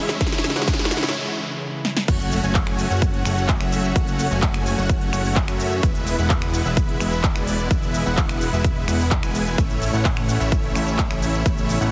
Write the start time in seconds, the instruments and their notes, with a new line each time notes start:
Already playing: analog synth bass G#1, string section C#3 E3 G#3 E4, supersaw synth G#3 C#4 E4 C#5 E5, riser
0.09 snare, closed hi-hat, shaker
0.21 analog synth bass G#1, supersaw synth G#3 C#4 E4 C#5 E5, kick, snare, closed hi-hat, noise sweep, shaker
0.27 snare
0.32 snare, closed hi-hat, shaker
0.38 snare
0.44 snare, open hi-hat, shaker
0.50 snare
0.56 analog synth bass G#1, supersaw synth G#3 C#4 E4 C#5 F#5, snare, shaker
0.62 snare
0.68 kick, snare, closed hi-hat, shaker
0.73 snare
0.79 snare, closed hi-hat, shaker
0.85 snare
0.91 snare, open hi-hat, shaker
0.97 snare
1.03 analog synth bass G#1, supersaw synth G#3 C#4 E4 C#5 E5, snare, closed hi-hat, shaker
1.09 snare
1.85 snare
1.97 snare
2.08 analog synth bass F#1, string section C#3 F#3 A3 F#4, supersaw synth A3 C#4 F#4 C#5 F#5, kick, closed hi-hat, crash, impact, shaker
2.20 closed hi-hat, shaker
2.32 open hi-hat, shaker
2.43 analog synth bass F#1, supersaw synth A3 C#4 F#4 C#5 G#5, closed hi-hat, shaker
2.55 kick, clap, closed hi-hat, shaker
2.67 finger snap, closed hi-hat
2.79 open hi-hat, shaker
2.90 analog synth bass F#1, supersaw synth A3 C#4 F#4 C#5 F#5, closed hi-hat, shaker
3.02 kick, closed hi-hat, shaker
3.14 closed hi-hat
3.25 analog synth bass F#1, supersaw synth A3 C#4 F#4 C#5 F#5, finger snap, open hi-hat, shaker
3.37 closed hi-hat, shaker
3.49 kick, clap, closed hi-hat, shaker
3.61 analog synth bass F#1, supersaw synth A3 C#4 F#4 C#5 E5, finger snap, closed hi-hat, shaker
3.72 open hi-hat, shaker
3.84 closed hi-hat, shaker
3.96 analog synth bass F#1, supersaw synth A3 C#4 F#4 C#5 F#5, kick, closed hi-hat, shaker
4.07 closed hi-hat, shaker
4.19 open hi-hat, shaker
4.31 analog synth bass F#1, supersaw synth A3 C#4 F#4 C#5 G#5, closed hi-hat, shaker
4.42 kick, clap, closed hi-hat, shaker
4.54 finger snap, closed hi-hat, shaker
4.66 open hi-hat, shaker
4.78 analog synth bass F#1, supersaw synth A3 C#4 F#4 C#5 F#5, closed hi-hat, shaker
4.89 kick, closed hi-hat, shaker
5.01 closed hi-hat
5.13 analog synth bass F#1, supersaw synth A3 C#4 F#4 C#5 F#5, finger snap, open hi-hat, shaker
5.25 open hi-hat, shaker
5.36 kick, clap, shaker
5.48 analog synth bass F#2, supersaw synth A3 C#4 F#4 C#5 E5, finger snap, closed hi-hat, shaker
5.60 open hi-hat, shaker
5.72 closed hi-hat, shaker
5.83 analog synth bass E1, string section B2 E3 G#3 E4, supersaw synth G#3 B3 E4 B4 E5, kick, closed hi-hat, shaker
5.95 closed hi-hat, shaker
6.07 open hi-hat, shaker
6.18 analog synth bass E1, supersaw synth G#3 B3 E4 B4 F#5, closed hi-hat, shaker
6.30 kick, clap, closed hi-hat, shaker
6.42 finger snap, closed hi-hat
6.54 open hi-hat, shaker
6.65 analog synth bass E1, supersaw synth G#3 B3 E4 B4 E5, closed hi-hat, shaker
6.77 kick, closed hi-hat, shaker
6.89 closed hi-hat
7.00 analog synth bass E1, supersaw synth G#3 B3 E4 B4 E5, finger snap, open hi-hat, shaker
7.12 closed hi-hat, shaker
7.24 kick, clap, closed hi-hat, shaker
7.36 analog synth bass E1, supersaw synth G#3 B3 E4 B4 D5, finger snap, closed hi-hat, shaker
7.47 open hi-hat, shaker
7.59 closed hi-hat, shaker
7.71 analog synth bass E1, supersaw synth G#3 B3 E4 B4 E5, kick, closed hi-hat, shaker
7.83 closed hi-hat, shaker
7.94 open hi-hat, shaker
8.06 analog synth bass E1, supersaw synth G#3 B3 E4 B4 F#5, shaker
8.17 kick, clap, closed hi-hat, shaker
8.29 finger snap, closed hi-hat, shaker
8.41 open hi-hat, shaker
8.53 analog synth bass E1, supersaw synth G#3 B3 E4 B4 E5, closed hi-hat, shaker
8.64 kick, closed hi-hat, shaker
8.76 closed hi-hat
8.88 analog synth bass E1, supersaw synth G#3 B3 E4 B4 F#5, finger snap, open hi-hat, shaker
9.00 open hi-hat, shaker
9.11 kick, clap, closed hi-hat, shaker
9.23 analog synth bass E1, supersaw synth G#3 B3 E4 B4 G#5, finger snap, closed hi-hat, shaker
9.35 open hi-hat, shaker
9.47 closed hi-hat, shaker
9.58 analog synth bass A1, string section C#3 A3 E4, supersaw synth A3 C#4 E4 C#5 E5, kick, closed hi-hat, shaker
9.70 closed hi-hat, shaker
9.82 open hi-hat, shaker
9.93 analog synth bass A1, supersaw synth A3 C#4 E4 C#5 F#5, closed hi-hat, shaker
10.05 kick, clap, closed hi-hat, shaker
10.17 finger snap, closed hi-hat
10.29 open hi-hat, shaker
10.40 analog synth bass A1, supersaw synth A3 C#4 E4 C#5 E5, shaker
10.52 kick, closed hi-hat, shaker
10.64 closed hi-hat
10.75 analog synth bass A1, supersaw synth A3 C#4 E4 C#5 E5, finger snap, open hi-hat, shaker
10.88 shaker
10.99 kick, clap, closed hi-hat, shaker
11.11 analog synth bass A1, supersaw synth A3 C#4 E4 C#5 E5, finger snap, closed hi-hat, shaker
11.22 open hi-hat, shaker
11.34 closed hi-hat, shaker
11.46 analog synth bass A1, supersaw synth A3 C#4 E4 C#5 E5, string section B3, kick, closed hi-hat, shaker
11.58 closed hi-hat, shaker
11.69 open hi-hat, shaker
11.81 analog synth bass A1, supersaw synth A3 C#4 E4 C#5 F#5, closed hi-hat, shaker